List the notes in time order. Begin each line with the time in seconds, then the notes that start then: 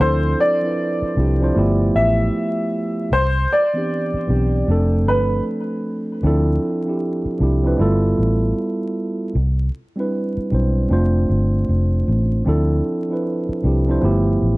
Already playing: C5
0.00 D2 F3 C4 D4 E4 A4 C5
0.41 D5
0.61 F3 C4 D4 E4
0.66 B4
1.02 muted fingered electric bass stroke
1.16 C2 F3 C4 D4 E4 G4
1.40 F3 C4 D4 E4 C5
1.54 G1 F3 A3 B3 E4 G4
1.95 A1 E5
3.12 C2 C5
3.52 D5
3.74 E3 B3 C4 D4 G4
4.14 muted fingered electric bass stroke
4.27 B1 E3 B3 C4 D4 G4
4.67 F1 F3 A3 C4 D4
4.71 A4
5.06 G1 B4
6.23 D2 F3 C4 D4 E4 A4
6.85 F3 C4 D4 E4
6.89 G4
7.25 muted fingered electric bass stroke
7.39 C2 F3 C4 D4 E4
7.43 G4
7.63 F3 C4 D4 E4
7.67 B4
7.77 G1 G3 A3 E4 F4
7.81 B3 A4
8.18 A1
9.35 C2
9.96 G3 C4 D4 E4
10.00 B4
10.37 muted fingered electric bass stroke
10.51 B1 G3 C4 D4 E4 C5
10.89 F1 A3 C4 D4 F4 C5
11.30 G1
11.69 F1
12.08 A1
12.45 D2 F3 C4 D4 E4
12.49 A4
13.09 F3 C4 D4 E4
13.13 B4
13.49 muted fingered electric bass stroke
13.63 C2 F3 C4 D4 E4
13.67 G4
13.87 F3 C4 D4 E4
13.91 C5
14.01 G1 F3 A3 B3 E4
14.05 G4
14.42 A1